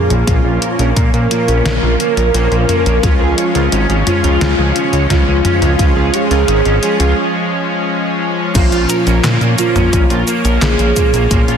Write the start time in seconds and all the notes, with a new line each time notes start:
Already playing: A#2 F3 A#3 C#4 F4 G#4
0.10 A#1 A#3, closed hi-hat
0.27 A#1 A#2 F3 A#3 C#4 F4, kick, closed hi-hat
0.45 A#1 F4
0.62 A#4, closed hi-hat
0.79 A#1 A#2 F3 A#3 C#4 A#4, closed hi-hat
0.96 A#2 A#3, kick, closed hi-hat
1.14 A#2 A#3, closed hi-hat
1.31 A#2 F3 A#3 C#4 F4, closed hi-hat
1.48 A#1 C#4, closed hi-hat
1.65 A#1 C#4, snare, closed hi-hat
1.83 A#1 A#2 F3 A#3 C#4 F4
2.00 A#3, closed hi-hat
2.17 A#1 A#4, closed hi-hat
2.34 A#1 A#2 F3 A#3 C#4 F4, closed hi-hat
2.52 A#1 A#3, closed hi-hat
2.69 F3 A#3 C#4 F4, closed hi-hat, mid tom
2.86 A#1 A#3, closed hi-hat
3.03 C#2 F3 G#3 C#4 F4, kick, closed hi-hat
3.21 C#2 G#4
3.38 C#5, closed hi-hat
3.55 C#2 F3 G#3 C#4 F4 A#4, closed hi-hat
3.72 G#1 C#4, closed hi-hat
3.89 G#1 C#4, closed hi-hat
4.07 F3 G#3 C#4 F4, closed hi-hat, mid tom
4.24 C#2 F4, closed hi-hat
4.41 C#2 F4, snare, closed hi-hat
4.58 C#2 F3 G#3 C#4 F4 G#4
4.76 C#4, closed hi-hat
4.93 C#2 C#5, closed hi-hat
5.10 C#2 F3 G#3 C#4 F4, kick, snare, closed hi-hat
5.27 C#2 C#4
5.45 F3 G#3 C#4 F4, closed hi-hat, mid tom
5.62 C#2 C#4, closed hi-hat
5.79 C#2 F3 G#3 C#4 F4, kick, closed hi-hat
5.96 C#2 G#4
6.14 G#4 C#5, closed hi-hat
6.31 C#2 F3 G#3 C#4 F4 A#4, closed hi-hat
6.48 G#1 C#4, closed hi-hat
6.65 G#1 C#4, closed hi-hat
6.83 F3 G#3 C#4 F4, closed hi-hat
7.00 C#2 F4, closed hi-hat
8.55 A#1 A#2 F3 A#3 C#4 F4, kick, closed hi-hat, crash, shaker
8.72 A#1 F4, closed hi-hat, shaker
8.89 A#4, closed hi-hat, shaker
9.07 A#1 A#2 F3 A#3 C#4 A#4, closed hi-hat, shaker
9.24 A#2 A#3, snare, clap, closed hi-hat, shaker
9.41 A#2 A#3, closed hi-hat, shaker
9.58 A#2 F3 A#3 C#4 F4, closed hi-hat, shaker
9.76 A#1 C#4, closed hi-hat, mid tom, shaker
9.93 A#1 C#4, kick, closed hi-hat, shaker
10.10 A#1 A#2 F3 A#3 C#4 F4, closed hi-hat, shaker
10.27 A#3, closed hi-hat, shaker
10.45 A#1 A#4, closed hi-hat, shaker
10.62 A#1 A#2 F3 A#3 C#4 F4 G#4, snare, clap, closed hi-hat, shaker
10.79 A#1 A#3, closed hi-hat, shaker
10.96 A#2 F3 A#3 C#4 F4, kick, closed hi-hat, shaker
11.14 A#1 A#3, closed hi-hat, shaker
11.31 A#1 A#2 F3 A#3 C#4 F4, kick, closed hi-hat, shaker
11.48 A#1 F4, closed hi-hat, shaker